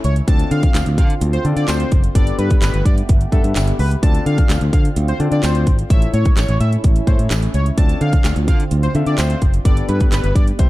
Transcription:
Already playing: A3 C#4 E4
0.04 C#2 C#5, closed hi-hat
0.16 closed hi-hat
0.27 D2 D3 C4 D4 F4 A4 D5 A5, kick, closed hi-hat
0.39 closed hi-hat
0.51 D3 F5, closed hi-hat
0.63 kick, closed hi-hat
0.74 D2, snare, clap, closed hi-hat, tambourine
0.86 D2, closed hi-hat
0.98 D3 F5, kick, closed hi-hat
1.10 closed hi-hat
1.21 D2, closed hi-hat
1.33 C5, closed hi-hat
1.45 D3 C4 D4 F4 A4 D5, closed hi-hat
1.56 D3 D5, closed hi-hat
1.68 D2 C5, snare, clap, closed hi-hat, tambourine
1.80 closed hi-hat
1.92 F#1, kick, closed hi-hat
2.04 closed hi-hat
2.15 G1 A3 B3 D4 G4 A4 D5, kick, closed hi-hat
2.27 closed hi-hat
2.39 G2 B4, closed hi-hat
2.50 kick, closed hi-hat
2.62 G1 B4, snare, clap, closed hi-hat, tambourine
2.74 G1, closed hi-hat
2.85 G2 D5, kick, closed hi-hat
2.98 closed hi-hat
3.09 G1, kick, closed hi-hat
3.21 closed hi-hat
3.32 G2 B3 D4 G4 A4 E5, kick, closed hi-hat
3.44 G2, closed hi-hat
3.55 G1, snare, clap, closed hi-hat, tambourine
3.67 closed hi-hat
3.79 C#2 B4, open hi-hat
3.91 closed hi-hat
4.03 D2 D3 C4 D4 F4 A4 D5 A5, kick, closed hi-hat
4.15 closed hi-hat
4.26 D3 F5, closed hi-hat
4.38 kick, closed hi-hat
4.49 D2, snare, clap, closed hi-hat, tambourine
4.61 D2, closed hi-hat
4.73 D3 F5, kick, closed hi-hat
4.85 closed hi-hat
4.96 D2, closed hi-hat
5.08 C5, closed hi-hat
5.20 D3 C4 D4 F4 A4 D5, closed hi-hat
5.32 D3 D5, closed hi-hat
5.43 D2 C5, snare, clap, closed hi-hat, tambourine
5.55 closed hi-hat
5.67 G#1, kick, closed hi-hat
5.79 closed hi-hat
5.90 A1 A3 C#4 E4 A4 C#5 E5, kick, closed hi-hat
6.02 closed hi-hat
6.14 A2 C#5, closed hi-hat
6.25 kick, closed hi-hat
6.37 A1 C#5, snare, clap, closed hi-hat, tambourine
6.49 A1, closed hi-hat
6.60 A2 E5, closed hi-hat
6.73 closed hi-hat
6.84 A1, kick, closed hi-hat
6.96 closed hi-hat
7.07 A2 E4 A4 C5 C#5, kick, closed hi-hat
7.19 A2, closed hi-hat
7.30 A1, snare, clap, closed hi-hat, tambourine
7.42 closed hi-hat
7.54 C#2 C#5, closed hi-hat
7.66 closed hi-hat
7.77 D2 D3 C4 D4 F4 A4 D5 A5, kick, closed hi-hat
7.89 closed hi-hat
8.01 D3 F5, closed hi-hat
8.13 kick, closed hi-hat
8.24 D2, snare, clap, closed hi-hat, tambourine
8.36 D2, closed hi-hat
8.48 D3 F5, kick, closed hi-hat
8.60 closed hi-hat
8.71 D2, closed hi-hat
8.83 C5, closed hi-hat
8.95 D3 C4 D4 F4 A4 E5, closed hi-hat
9.06 D3 D5, closed hi-hat
9.18 D2 C5, snare, clap, closed hi-hat, tambourine
9.30 closed hi-hat
9.42 F#1, kick, closed hi-hat
9.54 closed hi-hat
9.65 G1 A3 B3 D4 G4 A4 D5, kick, closed hi-hat
9.77 closed hi-hat
9.89 G2 B4, closed hi-hat
10.00 kick, closed hi-hat
10.12 G1 B4, snare, clap, closed hi-hat, tambourine
10.24 G1, closed hi-hat
10.35 G2 D5, kick, closed hi-hat
10.48 closed hi-hat
10.59 C2 C3 G3 E4 G4 C5, kick, closed hi-hat

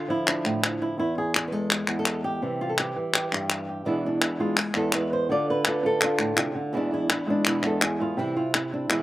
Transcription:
Already playing: D3 F4
0.08 F3 E4
0.27 D4, clap
0.45 A2, clap
0.64 F3, clap
0.82 E4
0.98 E2 E4
1.18 G#4
1.35 G#4, clap
1.48 B4
1.52 G#3 A4
1.70 G#4, clap
1.88 E2, clap
1.99 A4
2.06 clap
2.24 G4
2.42 C3 E3 G3
2.61 F4
2.69 A4
2.78 G4, clap
2.96 E3
3.14 G4, clap
3.32 G2 G3, clap
3.50 clap
3.69 G4
3.85 E2 B2 E3 G#3 B3 D4 E4
4.06 D4
4.21 E3 G#3 B3 E4, clap
4.39 E3 G#3 B3 E4 F4
4.57 G#4, muted nylon-string guitar stroke, clap
4.74 E2 E3 G#3 B3 E4 A4, clap
4.93 E3 G#3 B3 E4 B4, clap
5.13 C5
5.29 D3 A3 D4 F4 A4 D5
5.50 B4
5.65 D3 A3 D4 F4 A4, clap
5.83 A3 D4 F4 A4
6.01 F4, muted nylon-string guitar stroke, clap
6.19 A2 A3 D4 F4, clap
6.36 C3 A3 D4 F4, clap
6.55 D3
6.73 E2 B2 E3 G#3 B3 E4
6.77 D4
6.91 E3 G#3 B3 E4
7.09 E4, muted nylon-string guitar stroke, clap
7.27 E3 G#3 B3 D4 E4
7.45 E2 B2 E3 G#3 B3 E4, clap
7.63 E2 E3 G#3 B3 E4 A4, clap
7.81 G#4, muted nylon-string guitar stroke, clap
8.00 E3 G#3 B3 E4 F4
8.17 C3 E3 G3 C4 E4
8.36 G3 C4 E4 F4
8.54 E4, muted nylon-string guitar stroke, clap
8.72 G3 C4 D4 E4
8.90 E2 B2 E3 G#3 B3 E4, clap

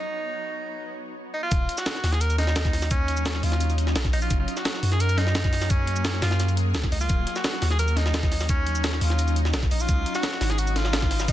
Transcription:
Already playing: B3 D#4 F#4
1.34 D#4
1.43 F4
1.51 D#1 F#3 C#4 D#4, kick, closed hi-hat, cabasa
1.69 closed hi-hat
1.78 F#4, snare, cabasa
1.86 snare, closed hi-hat, cabasa
1.95 snare
2.04 D#2, snare, closed hi-hat, open hi-hat
2.12 G#4, snare, closed hi-hat
2.21 A#4, closed hi-hat, cabasa
2.30 closed hi-hat, cabasa
2.38 D#4, snare, closed hi-hat
2.47 snare
2.56 snare, closed hi-hat, cabasa
2.65 kick, snare
2.73 snare, closed hi-hat, open hi-hat
2.82 snare, cabasa
2.91 C#4, kick, closed hi-hat, cabasa
3.08 closed hi-hat
3.17 cabasa
3.26 snare, closed hi-hat, cabasa
3.35 snare
3.43 D#2 F4, closed hi-hat, open hi-hat
3.52 snare, closed hi-hat
3.61 closed hi-hat, cabasa
3.70 closed hi-hat, cabasa
3.78 closed hi-hat
3.87 snare
3.96 A#1, snare, closed hi-hat, cabasa
4.04 kick, snare
4.13 A#1 D#4, closed hi-hat, open hi-hat
4.22 F4, cabasa
4.30 F#1 A#3 G#4, kick, closed hi-hat, cabasa
4.40 F4
4.48 closed hi-hat
4.57 F#4, snare, cabasa
4.65 snare, closed hi-hat, cabasa
4.74 snare
4.83 F#2, closed hi-hat, open hi-hat
4.92 G#4, snare, closed hi-hat
5.00 A#4, closed hi-hat, cabasa
5.09 closed hi-hat, cabasa
5.18 D#4, snare, closed hi-hat
5.27 snare
5.35 snare, closed hi-hat, cabasa
5.44 kick, snare
5.53 snare, closed hi-hat, open hi-hat
5.61 snare, cabasa
5.70 C#4, kick, closed hi-hat, cabasa
5.87 closed hi-hat
5.96 cabasa
6.05 snare, closed hi-hat, cabasa
6.14 snare
6.22 F#2 F4, snare, closed hi-hat, open hi-hat, cabasa
6.31 snare, closed hi-hat
6.40 snare, closed hi-hat, cabasa
6.48 closed hi-hat, cabasa
6.57 closed hi-hat
6.75 C#2, snare, closed hi-hat, cabasa
6.83 kick, snare
6.92 C#2 D#4, closed hi-hat, open hi-hat
7.01 F4, cabasa
7.09 D#1 C#4 D#4, kick, closed hi-hat, cabasa
7.27 closed hi-hat
7.36 F#4, snare, cabasa
7.44 snare, closed hi-hat, cabasa
7.53 snare
7.62 D#2, snare, closed hi-hat, open hi-hat
7.71 G#4, snare, closed hi-hat
7.79 A#4, closed hi-hat, cabasa
7.88 closed hi-hat, cabasa
7.97 D#4, snare, closed hi-hat
8.06 snare
8.14 snare, closed hi-hat, cabasa
8.23 kick, snare
8.32 snare, closed hi-hat, open hi-hat
8.40 snare, cabasa
8.49 C#4, kick, closed hi-hat, cabasa
8.66 closed hi-hat
8.75 cabasa
8.84 snare, closed hi-hat, cabasa
8.93 snare
9.01 D#2 F4, closed hi-hat, open hi-hat
9.10 snare, closed hi-hat
9.19 closed hi-hat, cabasa
9.28 closed hi-hat, cabasa
9.36 closed hi-hat
9.45 snare
9.54 A#1, snare, closed hi-hat, cabasa
9.63 kick, snare
9.71 A#1 D#4, closed hi-hat, open hi-hat
9.80 F4, cabasa
9.89 C#2 F#3 D#4 B4, kick, closed hi-hat, cabasa
10.06 closed hi-hat
10.15 F#4, snare, cabasa
10.23 snare, closed hi-hat, cabasa
10.32 snare
10.41 G#1, snare, closed hi-hat, open hi-hat
10.50 G#4, snare, closed hi-hat
10.58 F#4, closed hi-hat, cabasa
10.67 closed hi-hat, cabasa
10.76 F4, snare, closed hi-hat
10.85 snare
10.93 snare, closed hi-hat, cabasa
11.02 kick, snare
11.11 snare, closed hi-hat, open hi-hat
11.20 snare, cabasa
11.28 D#4, kick, closed hi-hat, cabasa

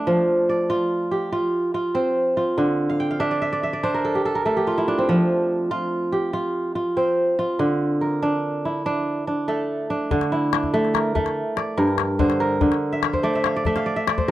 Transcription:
Already playing: A3 D4 E4 A4
0.07 F3
0.49 D5
0.70 F4
1.11 G4
1.32 F4
1.74 F4
1.95 C4 C5
2.37 F4
2.58 D3
2.90 F5
3.00 G5
3.11 F5
3.20 D4 E5
3.31 D5
3.42 E5
3.53 D5
3.63 E5
3.73 D5
3.83 D4 C5
3.94 A#4
4.05 A4
4.15 G4
4.25 A4
4.35 A#4
4.45 A3 A4
4.57 G4
4.67 F4
4.78 E4
4.88 D4
4.98 C4
5.09 F3
5.71 F4
6.12 G4
6.33 F4
6.75 F4
6.97 C4 C5
7.39 F4
7.59 D3
8.01 A#4
8.22 D4
8.65 E4
8.86 D4
9.27 D4
9.48 A3 A4
9.90 D4
10.11 D3, calabash thump
10.21 calabash click
10.32 E4
10.53 D4, calabash click
10.63 calabash thump
10.74 A3, calabash click
10.85 calabash click
10.94 A#4, calabash click
11.15 A3, calabash thump
11.26 calabash click
11.57 D5, calabash click
11.77 G2 A#4, calabash click
11.88 calabash click
11.98 calabash click
12.19 D3 C5, calabash thump
12.30 calabash click
12.40 A#4, calabash click
12.61 D3, calabash thump
12.72 calabash click
12.93 E5
13.03 F5, calabash click
13.13 C5, calabash thump
13.23 A3 D5, calabash click
13.34 E5, calabash click
13.44 F5, calabash click
13.56 D5
13.65 A3 E5, calabash thump
13.76 F5, calabash click
13.86 D5
13.96 E5
14.07 D5, calabash click
14.18 C5, calabash thump

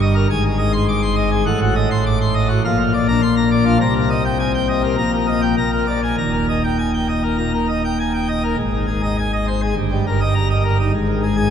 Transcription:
Already playing: G1 G2
0.02 D#5
0.15 A#4
0.31 G#1 G#2 G#5
0.45 G#4
0.59 D#5
0.73 C6
0.89 D6
1.02 C6
1.16 D#5
1.32 G#4
1.46 A1 A2 F#5
1.61 F#4
1.76 D#5
1.91 C6
2.06 D6
2.21 C6
2.35 D#5
2.49 F#4
2.64 A#1 A#2 F5
2.80 F4
2.94 D5
3.08 D4 A#5
3.22 C6
3.37 A#5
3.51 D5
3.65 D4 F4
3.81 C2 C3 A#5
3.95 A#4
4.10 D#5
4.25 G5
4.39 G#5
4.54 G5
4.69 D#5
4.83 A#4
4.98 A#1 A#2 A#5
5.13 A#4
5.27 D#5
5.42 G5
5.58 A#1 A#2 A#5
5.72 A#4
5.87 D5
6.03 G#5
6.18 D#1 D#2 A#5
6.33 A#4
6.49 D#5
6.64 G5
6.79 G#5
6.94 G5
7.09 D#5
7.23 A#4
7.38 A#2 A#5
7.53 A#4
7.69 D#5
7.85 G5
8.00 G#5
8.14 G5
8.29 D#5
8.43 A#4
8.58 G#1 G#2
8.73 D#3
8.88 G#4
9.03 D#5
9.19 G#5
9.33 D#5
9.48 C5
9.62 G#4
9.77 G1 G2
9.92 G3
10.07 A#4
10.21 D#5
10.35 A#5
10.50 D#5
10.64 A#4
10.80 D#4
10.94 G#1 G#2
11.09 D#3
11.23 G#4
11.37 G#5

